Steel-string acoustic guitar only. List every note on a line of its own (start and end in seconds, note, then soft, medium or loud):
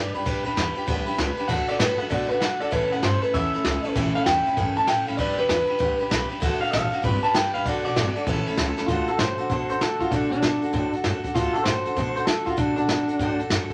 0.00 0.15 G3 medium
0.00 0.15 D4 medium
0.00 0.15 G4 medium
0.00 0.13 B4 medium
0.15 0.25 D4 soft
0.15 0.26 G4 medium
0.15 0.26 B4 medium
0.26 0.46 G3 loud
0.26 0.46 D4 loud
0.26 0.45 G4 loud
0.26 0.43 B4 loud
0.45 0.56 D4 medium
0.45 0.57 G4 medium
0.45 0.56 B4 medium
0.56 0.76 G3 medium
0.56 0.77 D4 medium
0.56 0.76 G4 medium
0.56 0.74 B4 medium
0.75 0.86 D4 medium
0.75 0.87 G4 medium
0.75 0.87 B4 medium
0.87 1.07 G3 medium
0.87 1.07 D4 loud
0.87 1.06 G4 loud
0.87 1.05 B4 medium
1.06 1.18 D4 medium
1.06 1.18 G4 medium
1.06 1.18 B4 medium
1.17 1.38 G3 medium
1.17 1.38 D4 medium
1.17 1.38 G4 medium
1.17 1.36 B4 medium
1.37 1.48 D4 medium
1.37 1.50 G4 medium
1.37 1.49 B4 medium
1.48 1.69 D3 medium
1.48 1.69 A3 medium
1.48 1.69 D4 medium
1.48 1.69 F#4 medium
1.48 1.67 A4 loud
1.68 1.79 D4 soft
1.68 1.80 F#4 medium
1.68 1.80 A4 medium
1.79 1.99 A3 medium
1.79 2.00 D4 medium
1.79 1.99 F#4 medium
1.79 1.98 A4 medium
1.99 2.10 D4 soft
1.99 2.10 F#4 medium
1.99 2.10 A4 medium
2.09 2.30 D3 medium
2.09 2.30 A3 medium
2.09 2.31 D4 medium
2.09 2.31 F#4 medium
2.09 2.29 A4 medium
2.30 2.41 D4 medium
2.30 2.42 F#4 soft
2.30 2.41 A4 medium
2.40 2.61 A3 medium
2.40 2.61 D4 medium
2.40 2.61 F#4 medium
2.40 2.60 A4 medium
2.61 2.72 D4 soft
2.61 2.73 F#4 medium
2.61 2.72 A4 medium
2.71 2.91 A2 medium
2.71 2.92 E3 loud
2.71 2.92 A3 loud
2.71 2.92 C#4 loud
2.71 2.91 E4 medium
2.71 2.90 A4 loud
2.91 3.01 A3 soft
2.91 3.02 C#4 soft
2.91 3.03 E4 soft
2.91 3.03 A4 medium
3.02 3.23 A3 medium
3.02 3.23 C#4 medium
3.02 3.22 E4 medium
3.02 3.21 A4 medium
3.22 3.33 A3 soft
3.22 3.34 C#4 soft
3.22 3.34 E4 medium
3.22 3.33 A4 medium
3.34 3.54 A2 medium
3.34 3.54 E3 medium
3.34 3.54 A3 medium
3.34 3.54 C#4 medium
3.34 3.54 E4 medium
3.34 3.52 A4 medium
3.54 3.64 A3 soft
3.54 3.64 C#4 medium
3.54 3.65 E4 soft
3.54 3.65 A4 medium
3.65 3.85 A3 medium
3.65 3.85 C#4 medium
3.65 3.84 E4 medium
3.65 3.83 A4 medium
3.84 3.95 A3 medium
3.84 3.96 C#4 medium
3.84 3.96 E4 medium
3.84 3.95 A4 medium
3.95 4.15 A2 loud
3.95 4.16 E3 loud
3.95 4.16 A3 loud
3.95 4.16 C#4 loud
3.95 4.15 E4 loud
3.95 4.14 A4 loud
4.15 4.25 A3 soft
4.15 4.27 C#4 medium
4.15 4.27 E4 medium
4.15 4.26 A4 medium
4.28 4.47 C#4 medium
4.28 4.46 E4 medium
4.28 4.45 A4 medium
4.46 4.56 A3 medium
4.46 4.57 C#4 soft
4.46 4.57 E4 medium
4.46 4.57 A4 medium
4.57 4.77 A2 medium
4.57 4.77 E3 medium
4.57 4.77 A3 medium
4.57 4.77 C#4 loud
4.57 4.76 E4 loud
4.57 4.75 A4 medium
4.76 4.86 A3 soft
4.76 4.87 C#4 soft
4.76 4.88 E4 medium
4.76 4.88 A4 medium
4.87 5.07 A3 medium
4.87 5.08 C#4 medium
4.87 5.07 E4 medium
4.87 5.05 A4 medium
5.07 5.17 A3 soft
5.07 5.19 C#4 medium
5.07 5.19 E4 medium
5.07 5.18 A4 medium
5.18 5.38 G3 medium
5.18 5.39 D4 medium
5.18 5.38 G4 medium
5.18 5.36 B4 loud
5.37 5.49 D4 soft
5.37 5.50 G4 medium
5.37 5.49 B4 medium
5.49 5.69 G3 medium
5.49 5.70 D4 medium
5.49 5.68 G4 medium
5.49 5.66 B4 medium
5.67 5.78 D4 soft
5.67 5.79 G4 soft
5.67 5.79 B4 medium
5.78 5.99 G3 medium
5.78 5.99 D4 loud
5.78 6.00 G4 loud
5.78 5.98 B4 loud
5.99 6.10 D4 soft
5.99 6.11 G4 medium
5.99 6.11 B4 medium
6.09 6.30 G3 medium
6.09 6.31 D4 medium
6.09 6.30 G4 medium
6.09 6.28 B4 medium
6.29 6.40 D4 medium
6.29 6.42 G4 medium
6.29 6.41 B4 medium
6.40 6.61 D3 loud
6.40 6.62 A3 loud
6.40 6.62 D4 loud
6.40 6.60 F#4 loud
6.40 6.59 A4 loud
6.60 6.71 D4 soft
6.60 6.72 F#4 medium
6.60 6.72 A4 medium
6.71 6.92 A3 medium
6.71 6.92 D4 medium
6.71 6.91 F#4 medium
6.71 6.89 A4 medium
6.90 7.02 D4 medium
6.90 7.04 F#4 medium
6.90 7.03 A4 medium
7.02 7.23 G3 medium
7.02 7.23 D4 medium
7.02 7.23 G4 medium
7.02 7.21 B4 loud
7.22 7.33 D4 soft
7.22 7.35 G4 medium
7.22 7.34 B4 medium
7.34 7.54 G3 medium
7.34 7.54 D4 medium
7.34 7.55 G4 medium
7.34 7.54 B4 medium
7.55 7.66 D4 soft
7.55 7.66 G4 medium
7.55 7.66 B4 medium
7.66 7.86 D3 loud
7.66 7.86 A3 medium
7.66 7.86 D4 medium
7.66 7.85 F#4 loud
7.66 7.84 A4 loud
7.85 7.96 D4 soft
7.85 7.96 F#4 soft
7.85 7.96 A4 medium
7.95 8.16 A3 medium
7.95 8.16 D4 medium
7.95 8.16 F#4 medium
7.95 8.14 A4 medium
8.16 8.28 D4 soft
8.16 8.28 F#4 soft
8.16 8.27 A4 medium
8.27 8.47 A2 loud
8.27 8.47 E3 medium
8.27 8.47 A3 medium
8.27 8.47 C#4 loud
8.27 8.47 E4 loud
8.27 8.46 A4 loud
8.47 8.57 A3 medium
8.47 8.57 C#4 medium
8.47 8.59 E4 medium
8.47 8.58 A4 medium
8.58 8.78 A3 medium
8.58 8.78 C#4 medium
8.58 8.77 E4 medium
8.58 8.76 A4 medium
8.77 8.88 A3 medium
8.77 8.89 C#4 medium
8.77 8.89 E4 medium
8.77 8.88 A4 medium
8.88 9.08 D3 medium
8.88 9.09 A3 medium
8.88 9.09 D4 loud
8.88 9.08 F#4 medium
8.88 9.06 A4 loud
9.08 9.18 D4 soft
9.08 9.19 F#4 soft
9.08 9.19 A4 medium
9.19 9.39 A3 medium
9.19 9.39 D4 medium
9.19 9.39 F#4 medium
9.19 9.37 A4 medium
9.38 9.50 D4 medium
9.38 9.50 F#4 soft
9.38 9.50 A4 medium
9.50 9.70 D3 medium
9.50 9.70 A3 medium
9.50 9.70 D4 medium
9.50 9.70 F#4 medium
9.50 9.68 A4 medium
9.69 9.81 D4 soft
9.69 9.81 F#4 medium
9.69 9.81 A4 medium
9.80 10.01 A3 medium
9.80 10.01 D4 medium
9.80 10.01 F#4 medium
9.80 9.99 A4 medium
10.00 10.11 D4 soft
10.00 10.12 F#4 soft
10.00 10.12 A4 medium
10.12 10.32 D3 medium
10.12 10.32 A3 medium
10.12 10.32 D4 loud
10.12 10.32 F#4 loud
10.12 10.30 A4 loud
10.31 10.42 D4 soft
10.31 10.43 F#4 medium
10.31 10.43 A4 soft
10.42 10.62 A3 medium
10.42 10.63 D4 medium
10.42 10.62 F#4 medium
10.42 10.61 A4 medium
10.62 10.73 D4 medium
10.62 10.73 F#4 medium
10.62 10.73 A4 medium
10.73 10.93 D3 medium
10.73 10.93 A3 medium
10.73 10.94 D4 medium
10.73 10.94 F#4 medium
10.73 10.92 A4 loud
10.93 11.04 D4 soft
10.93 11.05 F#4 medium
10.93 11.04 A4 medium
11.04 11.24 A3 medium
11.04 11.25 D4 medium
11.04 11.24 F#4 medium
11.04 11.22 A4 medium
11.24 11.35 D4 medium
11.24 11.35 F#4 medium
11.24 11.35 A4 medium
11.35 11.55 D3 medium
11.35 11.56 A3 medium
11.35 11.56 D4 medium
11.35 11.54 F#4 loud
11.35 11.53 A4 loud
11.54 11.65 D4 soft
11.54 11.66 F#4 medium
11.54 11.66 A4 medium
11.66 11.86 A3 medium
11.66 11.86 D4 medium
11.66 11.86 F#4 medium
11.66 11.84 A4 medium
11.85 11.96 D4 soft
11.85 11.97 F#4 medium
11.85 11.97 A4 medium
11.96 12.16 D3 medium
11.96 12.16 A3 medium
11.96 12.17 D4 medium
11.96 12.17 F#4 medium
11.96 12.15 A4 loud
12.16 12.27 D4 soft
12.16 12.28 F#4 soft
12.16 12.27 A4 medium
12.27 12.47 A3 medium
12.27 12.48 D4 medium
12.27 12.47 F#4 medium
12.27 12.45 A4 medium
12.46 12.57 D4 soft
12.46 12.58 F#4 medium
12.46 12.58 A4 medium
12.57 12.77 D3 loud
12.57 12.78 A3 loud
12.57 12.78 D4 medium
12.57 12.76 F#4 medium
12.57 12.75 A4 loud
12.76 12.89 D4 soft
12.76 12.89 F#4 soft
12.76 12.88 A4 medium
12.89 13.09 A3 medium
12.89 13.09 D4 medium
12.89 13.09 F#4 medium
12.89 13.06 A4 medium
13.08 13.20 D4 soft
13.08 13.20 F#4 soft
13.08 13.19 A4 medium
13.20 13.40 D3 loud
13.20 13.40 A3 loud
13.20 13.41 D4 loud
13.20 13.40 F#4 loud
13.20 13.38 A4 loud
13.39 13.51 D4 soft
13.39 13.51 F#4 medium
13.39 13.51 A4 medium
13.50 13.70 A3 medium
13.50 13.71 D4 medium
13.50 13.71 F#4 medium
13.50 13.69 A4 medium
13.70 13.73 A4 medium